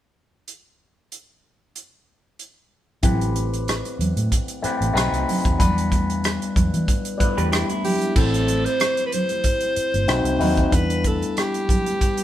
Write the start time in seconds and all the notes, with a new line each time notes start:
0.48 closed hi-hat
1.12 closed hi-hat
1.76 closed hi-hat
2.39 closed hi-hat
3.03 A1 A3 C4 E4 G4 B4, kick, closed hi-hat, muted conga, low conga
3.21 closed hi-hat
3.36 closed hi-hat, high conga
3.53 closed hi-hat
3.68 cross-stick, closed hi-hat
3.85 closed hi-hat, muted conga
3.99 E2, closed hi-hat, low conga
4.16 A2, closed hi-hat, high conga
4.32 kick, closed hi-hat, muted conga
4.48 closed hi-hat
4.62 A3 C4 E4 G4 B4, muted fingered electric bass stroke, cross-stick, closed hi-hat, high conga
4.81 A1, closed hi-hat, high conga
4.93 B1 A3 C4 D#4 F#4 B4, closed hi-hat
4.98 cross-stick
5.12 C2, closed hi-hat, muted conga, high conga
5.29 open hi-hat, low conga
5.45 D#2, kick, closed hi-hat
5.58 E2 G3 B3 D4 E4 B4, kick, closed hi-hat, muted conga, low conga
5.78 closed hi-hat, muted conga
5.92 kick, closed hi-hat, high conga
6.10 closed hi-hat
6.24 cross-stick, closed hi-hat
6.41 closed hi-hat, muted conga
6.56 E2, kick, closed hi-hat, low conga
6.74 E3, closed hi-hat, high conga
6.88 kick, closed hi-hat
7.05 closed hi-hat
7.18 G3 B3 D4 E4 B4, muted fingered electric bass stroke, kick, closed hi-hat, high conga
7.38 E2 G4 B4, closed hi-hat, high conga
7.52 E4 G4, cross-stick, closed hi-hat
7.69 E4, closed hi-hat, muted conga, high conga
7.84 G4, open hi-hat, low conga
8.01 closed hi-hat
8.15 A1 A3 C4 E4 G4 A4 C5, kick, crash
8.34 closed hi-hat, muted conga
8.48 closed hi-hat, high conga
8.65 C5, closed hi-hat
8.80 cross-stick, closed hi-hat, muted conga
8.97 closed hi-hat, muted conga
9.06 B4
9.12 C5, closed hi-hat, low conga
9.29 closed hi-hat, high conga
9.44 kick, closed hi-hat, muted conga
9.60 closed hi-hat
9.65 muted conga
9.76 muted fingered electric bass stroke, closed hi-hat
9.94 G1, closed hi-hat, high conga
10.08 B1 A3 C4 D#4 F#4 B4, cross-stick, closed hi-hat
10.24 C2, closed hi-hat, muted conga, high conga
10.39 D#2 A3 C4 D#4 F#4 B4, open hi-hat, low conga
10.57 kick, closed hi-hat
10.68 G3 B3 C5
10.72 E2 D4 E4 B4, kick, closed hi-hat
10.90 closed hi-hat
11.04 A4, kick, closed hi-hat, high conga
11.22 closed hi-hat
11.37 G4, cross-stick, closed hi-hat, muted conga
11.54 closed hi-hat, muted conga
11.69 kick, closed hi-hat, low conga
11.86 closed hi-hat, high conga
12.01 kick, closed hi-hat, muted conga
12.17 closed hi-hat, muted conga